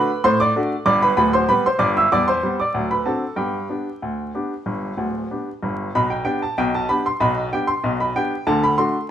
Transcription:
Already playing: A3 D4 F#4 B4 B5
0.24 A2 C5 C6
0.40 D5 D6
0.56 A3 D4 F#4
0.86 G1 G2 D5 D6
1.02 B4 B5
1.17 D1 D2 B4 B5
1.33 C5 C6
1.49 G3 B3 G4 B4 B5
1.66 C5 C6
1.79 G1 G2 D5 D6
1.97 E5 E6
2.12 E2 G3 D5 D6
2.28 C5 C6
2.43 G3 B3 G4
2.60 D5 D6
2.74 D2 F#3
2.91 B4 B5
3.06 C4 D4 F#4 A4 A5
3.36 G2 B3 G4 G5
3.69 B3 D4 G4
4.02 D2
4.34 B3 D4 G4
4.66 G1 G2
4.97 D1 D2
5.31 B3 D4 G4
5.63 G1 G2
5.95 B1 B2 B5
6.10 G5
6.25 B3 D4 G4 G5
6.42 A5
6.58 B1 B2 G5
6.75 A5
6.89 B3 D4 G4 B5
7.06 C6
7.20 B1 B2 B5
7.53 B3 D4 G4 G5
7.67 C6
7.84 B1 B2
8.00 B5
8.16 B3 D4 G4 G5
8.47 D2 D3 A5
8.64 B5
8.78 A3 D4 F#4 C6

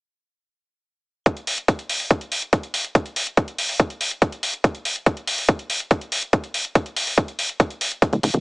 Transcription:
1.26 kick, closed hi-hat
1.37 closed hi-hat
1.47 open hi-hat
1.58 closed hi-hat
1.68 kick, closed hi-hat
1.79 closed hi-hat
1.89 open hi-hat
2.00 open hi-hat
2.11 kick, closed hi-hat
2.21 closed hi-hat
2.32 open hi-hat
2.42 closed hi-hat
2.53 kick, closed hi-hat
2.63 closed hi-hat
2.74 open hi-hat
2.85 closed hi-hat
2.95 kick, closed hi-hat
3.06 closed hi-hat
3.16 open hi-hat
3.27 closed hi-hat
3.37 kick, closed hi-hat
3.48 closed hi-hat
3.58 open hi-hat
3.69 open hi-hat
3.80 kick, closed hi-hat
3.90 closed hi-hat
4.01 open hi-hat
4.11 closed hi-hat
4.22 kick, closed hi-hat
4.32 closed hi-hat
4.43 open hi-hat
4.54 closed hi-hat
4.64 kick, closed hi-hat
4.75 closed hi-hat
4.85 open hi-hat
4.96 closed hi-hat
5.06 kick, closed hi-hat
5.17 closed hi-hat
5.27 open hi-hat
5.38 open hi-hat
5.49 kick, closed hi-hat
5.59 closed hi-hat
5.70 open hi-hat
5.80 closed hi-hat
5.91 kick, closed hi-hat
6.01 closed hi-hat
6.12 open hi-hat
6.23 closed hi-hat
6.33 kick, closed hi-hat
6.44 closed hi-hat
6.54 open hi-hat
6.65 closed hi-hat
6.75 kick, closed hi-hat
6.86 closed hi-hat
6.96 open hi-hat
7.07 open hi-hat
7.18 kick
7.28 closed hi-hat
7.39 open hi-hat
7.49 closed hi-hat
7.60 kick, closed hi-hat
7.70 closed hi-hat
7.81 open hi-hat
7.92 closed hi-hat
8.02 kick, closed hi-hat
8.13 D1, closed hi-hat
8.23 D1, open hi-hat
8.34 D1, closed hi-hat

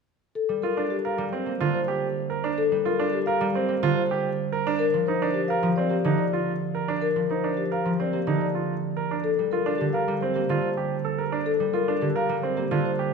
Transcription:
0.35 A4
0.49 G3
0.62 F4 A#4
0.77 D4
0.90 G4
1.05 A#4 F5
1.18 G3
1.33 C4 C5
1.46 A#3
1.60 D3 F4
1.74 C5
1.88 G4
2.30 A#4
2.44 D4
2.58 A4
2.72 G3
2.85 F4 A#4
2.99 D4
3.13 G4
3.26 A#4 F5
3.41 G3
3.54 C4 C5
3.68 A#3
3.83 D3 F4
3.96 C5
4.11 G4
4.52 A#4
4.67 D4
4.79 A#4
4.94 F3
5.06 D#4 C5
5.22 D4
5.34 G4
5.48 A#4 F5
5.63 F3
5.76 C4 D5
5.90 A#3 G4
6.04 D3 D#4
6.18 D5
6.33 F4
6.75 A#4
6.88 D4
7.02 A#4
7.16 F3
7.30 D#4 C5
7.44 D4
7.57 G4
7.72 A#4 F5
7.85 F3
8.00 C4 D5
8.13 A#3 G4
8.27 D3 D#4
8.41 D5
8.55 F4
8.97 A#4
9.11 D4
9.24 A4
9.39 G3
9.51 F4 A#4
9.66 D4
9.78 D3 G4
9.93 A#4 F5
10.08 G3
10.21 C4 C5
10.34 A#3 G4
10.49 D3 F4
10.62 C5
10.77 G4
11.05 A4
11.18 A#4
11.32 D4
11.46 A4
11.60 G3
11.73 F4 A#4
11.88 D4
12.01 D3 G4
12.16 A#4 F5
12.29 G3
12.42 C4 C5
12.57 A#3 G4
12.71 D3 F4
12.85 C5
12.99 G4

